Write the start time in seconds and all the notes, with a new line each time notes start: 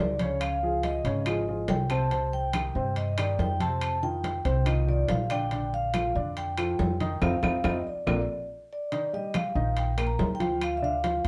Already playing: F#3 F#4 A4 D5
0.00 C#2
0.19 C#3 C#4 C#5, high conga, high timbale
0.41 F5, high conga, high timbale, claves
0.62 F3 F4 G#4, high conga
0.83 D#5, high conga, high timbale, low timbale
1.04 G#1 C#3 C#4 C#5, high conga, high timbale
1.26 F3 F4 G#4, high conga, high timbale, claves
1.48 F3 F4 G#4, high conga
1.68 C2 G5, high conga, high timbale, low timbale
1.90 C3 C4 C5 A5, high timbale, claves
2.11 C3 C4 C5, high conga, high timbale
2.33 G5, high conga
2.53 D#3 D#4 G4, high conga, high timbale, low timbale, claves
2.75 G2 C3 C4 C5, high conga
2.96 D#5, high conga, high timbale
3.18 D#3 D#4 G4 D5, high conga, high timbale, claves
3.39 F2 G5, high conga, low timbale
3.60 C3 C4 C5 A5, high conga, high timbale
3.81 high conga, high timbale, claves
4.03 D#3 D#4 F4 G5, high conga
4.24 high conga, high timbale, low timbale
4.45 C2 C3 C4 C5, high conga, high timbale
4.66 D#3 D#4 F4 D#5, high conga, high timbale, claves
4.87 D#3 D#4 F4 D5, high conga
5.09 A#1 F5, high conga, high timbale, low timbale
5.30 D3 D4 D5 G5, high timbale, claves
5.51 D3 D4 D5, high conga, high timbale
5.73 F5, high conga
5.94 F3 F4 A4, high conga, high timbale, low timbale, claves
6.15 F2 D3 D4 D5, high conga
6.37 G5, high conga, high timbale
6.58 F3 F4 A4, high conga, high timbale, claves
6.79 F2, high conga, low timbale
7.00 D#3 D#4 D#5, high conga, high timbale
7.22 F2 C4 D#4 F4 F5, high conga, high timbale, claves
7.43 F2 C4 D#4 F4, high conga, high timbale, claves
7.64 F2 C4 D#4 F4 D#5, high conga, high timbale, claves
7.87 D5
8.07 A#1 A#3 D4 F4, high conga, high timbale, claves
8.73 D5
8.92 D#3 D#4 D#5, high conga, high timbale
9.13 G3 G4 D#5 G5, high conga
9.34 F5, high conga, high timbale, low timbale, claves
9.55 A#1 D#3 D#4 D#5, high conga
9.77 G5, high conga, high timbale
9.98 A#3 A#4 A#5, high conga, high timbale, claves
10.07 A#5
10.19 D2, high conga, low timbale
10.35 G5
10.40 F3 F4 F5, high conga, high timbale
10.61 F5, high conga, high timbale, claves
10.77 E5
10.82 D3 D4 D5 F5, high conga
11.03 F3 F4 F5, high conga, high timbale, low timbale
11.25 G1, high timbale